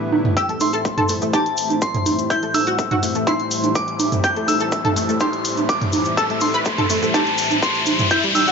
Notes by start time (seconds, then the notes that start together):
Already playing: A2 D3 E3 G3 B3 E4
0.12 high conga
0.25 mid tom
0.37 A2 E3 G3 C4 E4 G4 E6, kick, closed hi-hat, riser, cabasa
0.49 A3, closed hi-hat
0.60 A3 C6, open hi-hat, high conga, cabasa
0.73 A4, closed hi-hat, cabasa
0.85 A3, kick, closed hi-hat, cabasa
0.98 A4, closed hi-hat, mid tom, high conga
1.08 A3, open hi-hat, cabasa
1.22 A3, closed hi-hat, cabasa
1.33 G4 A5, kick, closed hi-hat, high conga, cabasa
1.46 closed hi-hat
1.57 open hi-hat, cabasa
1.70 closed hi-hat, high conga, cabasa
1.82 C6, kick, closed hi-hat, cabasa
1.94 closed hi-hat, mid tom
2.06 open hi-hat, high conga, cabasa
2.19 closed hi-hat, cabasa
2.30 E4 G6, kick, closed hi-hat, cabasa
2.43 A3, closed hi-hat
2.54 A3 E6, open hi-hat, high conga, cabasa
2.67 F#4, closed hi-hat, cabasa
2.79 A3, kick, closed hi-hat, cabasa
2.91 F#4, closed hi-hat, mid tom, high conga
3.03 A3, open hi-hat, cabasa
3.15 A3, closed hi-hat, cabasa
3.27 E4 C6, kick, closed hi-hat, high conga, cabasa
3.40 closed hi-hat
3.51 open hi-hat, cabasa
3.64 closed hi-hat, high conga, cabasa
3.75 D6, kick, closed hi-hat, cabasa
3.88 closed hi-hat
4.00 open hi-hat, high conga, cabasa
4.12 closed hi-hat, mid tom, cabasa
4.24 G4 G6, kick, closed hi-hat, cabasa
4.36 A3, closed hi-hat
4.48 A3 E6, open hi-hat, high conga, cabasa
4.60 A4, closed hi-hat, cabasa
4.72 A3, kick, closed hi-hat, cabasa
4.85 A4, closed hi-hat, mid tom, high conga
4.96 A3, open hi-hat, cabasa
5.09 A3, closed hi-hat, cabasa
5.20 G4 C6, kick, closed hi-hat, high conga, cabasa
5.33 closed hi-hat
5.45 open hi-hat, cabasa
5.57 closed hi-hat, high conga, cabasa
5.69 D6, kick, closed hi-hat, cabasa
5.81 closed hi-hat, mid tom
5.92 open hi-hat, high conga, cabasa
6.05 closed hi-hat, cabasa
6.17 A4 E6, kick, closed hi-hat, cabasa
6.30 A3, closed hi-hat
6.41 A3 C6, open hi-hat, high conga, cabasa
6.54 B4, closed hi-hat, cabasa
6.65 A3, kick, closed hi-hat, cabasa
6.78 A4, closed hi-hat, mid tom, high conga
6.90 A3, open hi-hat, cabasa
7.03 A3, closed hi-hat, cabasa
7.14 G4 A5, kick, closed hi-hat, high conga, cabasa
7.27 closed hi-hat
7.38 open hi-hat, cabasa
7.51 closed hi-hat, high conga, cabasa
7.63 C6, kick, closed hi-hat, cabasa
7.75 closed hi-hat
7.86 open hi-hat, high conga, cabasa
7.99 closed hi-hat, mid tom, cabasa
8.11 C3 E3 D4 E4 G6, kick, closed hi-hat, cabasa
8.23 G3, closed hi-hat
8.35 G3 E6, open hi-hat, high conga, cabasa
8.47 F#4, closed hi-hat, cabasa